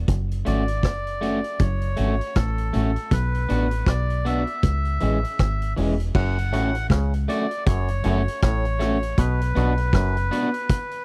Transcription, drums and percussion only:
0.08 kick, closed hi-hat
0.31 closed hi-hat
0.46 closed hi-hat
0.68 closed hi-hat
0.83 kick, cross-stick, closed hi-hat
1.07 closed hi-hat
1.23 closed hi-hat
1.44 closed hi-hat
1.59 kick, closed hi-hat
1.82 closed hi-hat
1.97 closed hi-hat
2.21 closed hi-hat
2.35 kick, cross-stick, closed hi-hat
2.58 closed hi-hat
2.74 closed hi-hat
2.96 closed hi-hat
3.11 kick, closed hi-hat
3.35 closed hi-hat
3.49 closed hi-hat
3.71 closed hi-hat
3.86 kick, cross-stick, closed hi-hat
4.10 closed hi-hat
4.26 closed hi-hat
4.47 closed hi-hat
4.63 kick, closed hi-hat
4.85 closed hi-hat
5.00 closed hi-hat
5.25 closed hi-hat
5.39 kick, cross-stick, closed hi-hat
5.62 closed hi-hat
5.77 open hi-hat
6.00 closed hi-hat
6.15 kick, crash
6.38 closed hi-hat
6.53 closed hi-hat
6.75 closed hi-hat
6.90 kick, cross-stick, closed hi-hat
7.14 closed hi-hat
7.30 closed hi-hat
7.51 closed hi-hat
7.66 kick, closed hi-hat
7.88 closed hi-hat
8.04 closed hi-hat
8.28 closed hi-hat
8.42 kick, cross-stick, closed hi-hat
8.65 closed hi-hat
8.80 cross-stick, closed hi-hat
9.03 closed hi-hat
9.18 kick, closed hi-hat
9.41 closed hi-hat
9.56 closed hi-hat
9.78 closed hi-hat
9.93 kick, cross-stick, closed hi-hat
10.17 closed hi-hat
10.33 closed hi-hat
10.54 closed hi-hat
10.69 kick, closed hi-hat
10.91 closed hi-hat

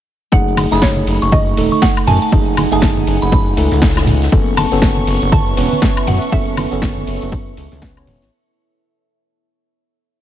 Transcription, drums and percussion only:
0.32 kick, closed hi-hat, cabasa
0.48 closed hi-hat, cabasa
0.57 closed hi-hat, open hi-hat, ride, high conga, high woodblock
0.72 snare, closed hi-hat, cabasa
0.82 kick, snare, closed hi-hat, cabasa
0.97 high conga, cabasa
1.07 closed hi-hat, open hi-hat, ride
1.22 closed hi-hat, cabasa
1.32 kick, closed hi-hat, high conga, cabasa
1.48 cabasa
1.57 closed hi-hat, open hi-hat, ride
1.72 high conga, cabasa
1.82 kick, snare, closed hi-hat, cabasa
1.97 closed hi-hat, cabasa, high woodblock
2.07 closed hi-hat, open hi-hat, ride, high conga, low conga
2.22 closed hi-hat, cabasa
2.32 kick, closed hi-hat, open hi-hat, cabasa
2.48 cabasa
2.57 closed hi-hat, open hi-hat, ride, high conga, high woodblock
2.72 closed hi-hat, cabasa
2.82 kick, snare, closed hi-hat, cabasa
2.97 closed hi-hat, high conga, cabasa
3.07 closed hi-hat, open hi-hat, ride
3.22 closed hi-hat, cabasa
3.32 kick, closed hi-hat, high conga, cabasa
3.47 cabasa
3.57 closed hi-hat, open hi-hat, ride
3.71 snare, closed hi-hat, high conga, cabasa
3.82 kick, snare, closed hi-hat, cabasa
3.89 snare, closed hi-hat
3.97 snare, closed hi-hat, cabasa, high woodblock
4.02 snare, closed hi-hat
4.07 closed hi-hat, open hi-hat, ride, high conga, low conga
4.22 snare, closed hi-hat, cabasa
4.32 kick, closed hi-hat, cabasa
4.47 closed hi-hat, cabasa
4.56 closed hi-hat, open hi-hat, ride, high conga, high woodblock
4.72 snare, closed hi-hat, cabasa
4.82 kick, snare, closed hi-hat, cabasa
4.97 high conga, cabasa
5.07 closed hi-hat, open hi-hat, ride
5.22 closed hi-hat, cabasa
5.32 kick, closed hi-hat, high conga, cabasa
5.48 cabasa
5.57 closed hi-hat, open hi-hat, ride
5.72 high conga, cabasa
5.82 kick, snare, closed hi-hat, cabasa
5.97 closed hi-hat, cabasa, high woodblock
6.07 closed hi-hat, open hi-hat, ride, high conga, low conga
6.22 closed hi-hat, cabasa
6.32 kick, closed hi-hat, open hi-hat, cabasa
6.48 cabasa
6.57 closed hi-hat, open hi-hat, ride, high conga, high woodblock
6.72 closed hi-hat, cabasa
6.82 kick, snare, closed hi-hat, cabasa
6.97 closed hi-hat, high conga, cabasa
7.07 closed hi-hat, open hi-hat, ride
7.22 closed hi-hat, cabasa
7.32 kick, closed hi-hat, high conga, cabasa
7.48 cabasa
7.57 closed hi-hat, open hi-hat, ride
7.72 snare, closed hi-hat, high conga, cabasa
7.82 kick, snare, closed hi-hat, cabasa
7.97 closed hi-hat, cabasa, high woodblock
8.07 closed hi-hat, open hi-hat, ride, high conga, low conga
8.22 snare, closed hi-hat, cabasa

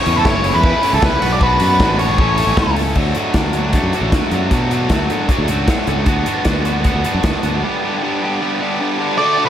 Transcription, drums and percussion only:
0.06 open hi-hat
0.25 kick, snare
0.44 open hi-hat
0.64 kick
0.83 open hi-hat
1.02 kick, snare
1.22 open hi-hat
1.41 kick
1.60 open hi-hat
1.80 kick, snare
1.99 open hi-hat
2.18 kick
2.38 open hi-hat
2.57 kick, snare
2.76 open hi-hat
2.95 kick, crash
3.15 closed hi-hat
3.34 kick, snare, closed hi-hat
3.53 closed hi-hat
3.73 kick, closed hi-hat
3.93 closed hi-hat
4.12 kick, snare, closed hi-hat
4.31 closed hi-hat
4.51 kick, closed hi-hat
4.71 closed hi-hat
4.90 kick, snare, closed hi-hat
5.10 closed hi-hat
5.29 kick, closed hi-hat
5.48 closed hi-hat
5.68 kick, snare, closed hi-hat
5.87 closed hi-hat
6.06 kick, closed hi-hat
6.26 closed hi-hat
6.45 kick, snare, closed hi-hat
6.65 closed hi-hat
6.84 kick, closed hi-hat
7.04 closed hi-hat
7.23 kick, snare, closed hi-hat
7.43 closed hi-hat

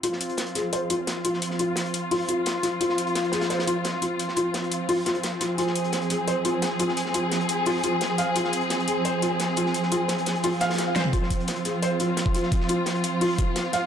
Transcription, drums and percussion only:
0.03 closed hi-hat
0.13 snare
0.20 closed hi-hat
0.29 closed hi-hat
0.37 snare, closed hi-hat
0.46 closed hi-hat
0.55 snare, closed hi-hat
0.73 closed hi-hat
0.90 closed hi-hat
1.07 snare, closed hi-hat
1.25 closed hi-hat
1.33 snare
1.42 closed hi-hat
1.50 snare
1.59 closed hi-hat
1.76 snare, closed hi-hat
1.86 closed hi-hat
1.94 closed hi-hat
2.11 closed hi-hat, open hi-hat
2.28 closed hi-hat
2.46 snare, closed hi-hat
2.63 snare, closed hi-hat
2.81 closed hi-hat
2.89 snare
2.98 closed hi-hat
3.07 closed hi-hat
3.15 snare, closed hi-hat
3.24 closed hi-hat
3.32 snare, closed hi-hat
3.41 snare, closed hi-hat
3.50 snare, closed hi-hat
3.59 snare, closed hi-hat
3.68 closed hi-hat
3.84 snare, closed hi-hat
4.02 closed hi-hat
4.19 closed hi-hat
4.28 snare
4.36 closed hi-hat
4.54 snare, closed hi-hat
4.64 closed hi-hat
4.72 closed hi-hat
4.89 closed hi-hat, open hi-hat
5.06 snare, closed hi-hat
5.15 closed hi-hat
5.23 snare, closed hi-hat
5.41 snare, closed hi-hat
5.58 closed hi-hat
5.67 snare
5.76 closed hi-hat
5.84 closed hi-hat
5.92 snare, closed hi-hat
6.01 closed hi-hat
6.10 snare, closed hi-hat
6.28 closed hi-hat
6.45 closed hi-hat
6.62 snare, closed hi-hat
6.79 closed hi-hat
6.88 snare
6.97 closed hi-hat
7.05 snare
7.14 closed hi-hat
7.32 snare, closed hi-hat
7.41 closed hi-hat
7.49 closed hi-hat
7.66 closed hi-hat, open hi-hat
7.83 closed hi-hat
8.01 snare, closed hi-hat
8.18 snare, closed hi-hat
8.36 closed hi-hat
8.44 snare
8.53 closed hi-hat
8.61 closed hi-hat
8.70 snare, closed hi-hat
8.80 closed hi-hat
8.88 closed hi-hat
9.05 closed hi-hat
9.22 closed hi-hat
9.40 snare, closed hi-hat
9.56 closed hi-hat
9.66 snare
9.74 closed hi-hat
9.83 snare
9.92 closed hi-hat
10.08 snare, closed hi-hat
10.18 closed hi-hat
10.26 snare, closed hi-hat
10.35 closed hi-hat
10.43 closed hi-hat, open hi-hat
10.60 snare, closed hi-hat
10.70 snare, closed hi-hat
10.74 snare, closed hi-hat
10.78 snare, closed hi-hat
10.96 snare, closed hi-hat
11.05 mid tom
11.13 kick, closed hi-hat
11.23 snare
11.30 kick, closed hi-hat
11.40 closed hi-hat
11.47 snare, closed hi-hat
11.56 closed hi-hat
11.65 snare, closed hi-hat
11.82 closed hi-hat
12.00 closed hi-hat
12.17 snare, closed hi-hat
12.26 kick
12.35 closed hi-hat
12.43 snare
12.52 kick, closed hi-hat
12.60 snare
12.69 closed hi-hat
12.86 snare, closed hi-hat
12.95 closed hi-hat
13.04 closed hi-hat
13.21 closed hi-hat, open hi-hat
13.38 kick, closed hi-hat
13.56 snare, closed hi-hat
13.73 snare, closed hi-hat

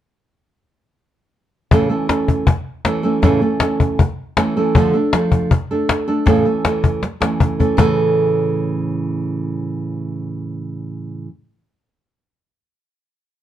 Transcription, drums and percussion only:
1.71 cajon bass
2.09 cajon slap
2.28 cajon bass
2.47 cajon bass
2.85 cajon slap
3.23 cajon bass, cajon slap
3.60 cajon slap
3.80 cajon bass
3.99 cajon bass
4.37 cajon slap
4.75 cajon bass
5.13 cajon slap
5.32 cajon bass
5.51 cajon bass
5.89 cajon slap
6.27 cajon bass, cajon slap
6.65 cajon slap
6.84 cajon bass
7.03 cajon slap
7.22 cajon slap
7.40 cajon bass
7.60 cajon bass
7.78 cajon bass

